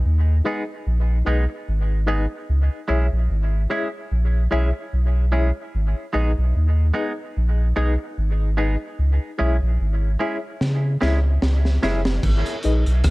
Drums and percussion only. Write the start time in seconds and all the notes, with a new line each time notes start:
10.61 snare
11.02 snare
11.42 snare
11.65 snare
11.83 snare
12.05 snare
12.23 kick, crash
12.46 closed hi-hat
12.63 closed hi-hat
12.86 closed hi-hat
13.04 kick, cross-stick, closed hi-hat